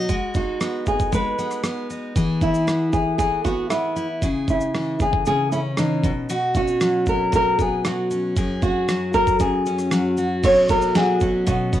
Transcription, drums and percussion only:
0.09 kick loud
0.09 shaker medium
0.34 kick medium
0.34 shaker soft
0.61 cross-stick loud
0.61 shaker medium
0.86 kick medium
0.86 shaker soft
0.99 kick medium
0.99 shaker soft
1.13 kick medium
1.13 shaker medium
1.39 shaker soft
1.51 cross-stick soft
1.51 shaker medium
1.64 cross-stick loud
1.64 shaker medium
1.90 shaker soft
2.16 kick loud
2.16 shaker medium
2.41 kick medium
2.41 shaker soft
2.54 shaker soft
2.68 cross-stick loud
2.68 shaker medium
2.93 kick medium
2.93 shaker soft
3.19 kick medium
3.19 shaker medium
3.45 kick medium
3.45 shaker soft
3.70 cross-stick loud
3.70 shaker medium
3.97 shaker soft
4.22 kick loud
4.22 shaker medium
4.48 kick medium
4.48 shaker soft
4.61 shaker soft
4.75 cross-stick loud
4.75 shaker medium
5.00 kick medium
5.00 shaker soft
5.13 kick loud
5.26 shaker medium
5.52 shaker soft
5.77 cross-stick loud
5.77 shaker medium
6.03 kick medium
6.03 shaker medium
6.29 shaker medium
6.55 kick medium
6.55 shaker soft
6.68 shaker soft
6.81 cross-stick loud
6.81 shaker medium
7.06 kick medium
7.06 shaker soft
7.33 kick medium
7.33 shaker medium
7.59 kick medium
7.59 shaker medium
7.85 cross-stick loud
7.85 shaker medium
8.11 shaker medium
8.36 kick loud
8.36 shaker medium
8.62 kick medium
8.62 shaker soft
8.89 cross-stick loud
8.89 shaker medium
9.14 kick medium
9.14 shaker soft
9.27 kick loud
9.27 shaker medium
9.40 kick medium
9.40 shaker medium
9.66 shaker medium
9.79 cross-stick soft
9.79 shaker medium
9.92 cross-stick loud
9.92 shaker medium
10.18 shaker soft
10.44 kick loud
10.44 crash loud
10.44 shaker medium
10.69 kick loud
10.69 shaker soft
10.82 shaker soft
10.95 snare loud
10.95 shaker medium
11.20 kick medium
11.20 shaker soft
11.47 kick medium
11.47 shaker medium
11.73 kick medium
11.73 shaker medium

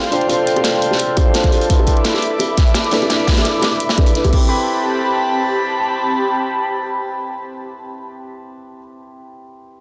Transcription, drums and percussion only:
0.04 closed hi-hat soft
0.12 closed hi-hat medium
0.21 closed hi-hat soft
0.29 closed hi-hat medium
0.29 high bongo soft
0.47 closed hi-hat medium
0.56 closed hi-hat soft
0.56 high bongo medium
0.64 snare loud
0.64 closed hi-hat medium
0.82 closed hi-hat medium
0.91 snare soft
0.91 high bongo medium
0.99 closed hi-hat medium
1.17 kick medium
1.17 closed hi-hat medium
1.17 high bongo medium
1.34 snare loud
1.34 closed hi-hat medium
1.44 kick medium
1.44 closed hi-hat soft
1.52 closed hi-hat medium
1.52 high bongo soft
1.61 closed hi-hat soft
1.70 kick loud
1.70 closed hi-hat medium
1.79 high bongo medium
1.87 kick medium
1.87 closed hi-hat medium
1.97 closed hi-hat soft
2.04 snare loud
2.04 closed hi-hat medium
2.04 closed hi-hat loud
2.14 snare soft
2.14 high bongo soft
2.22 closed hi-hat medium
2.39 closed hi-hat medium
2.39 high bongo medium
2.57 kick loud
2.57 snare soft
2.57 closed hi-hat medium
2.67 closed hi-hat soft
2.74 snare loud
2.74 closed hi-hat medium
2.74 high bongo soft
2.84 closed hi-hat soft
2.91 snare loud
2.91 closed hi-hat medium
3.02 closed hi-hat soft
3.02 high bongo medium
3.10 snare loud
3.10 closed hi-hat medium
3.27 kick medium
3.27 snare medium
3.27 closed hi-hat medium
3.32 snare medium
3.32 closed hi-hat medium
3.37 snare medium
3.37 closed hi-hat soft
3.37 closed hi-hat medium
3.37 high bongo soft
3.45 snare loud
3.45 closed hi-hat medium
3.62 snare loud
3.62 closed hi-hat medium
3.62 high bongo medium
3.80 closed hi-hat loud
3.80 closed hi-hat medium
3.89 snare medium
3.89 closed hi-hat medium
3.98 kick medium
3.98 closed hi-hat medium
3.98 high bongo soft
4.06 closed hi-hat medium
4.15 snare soft
4.15 closed hi-hat medium
4.24 kick medium
4.24 closed hi-hat medium
4.24 closed hi-hat soft
4.24 high bongo medium
4.33 kick loud
4.33 crash medium

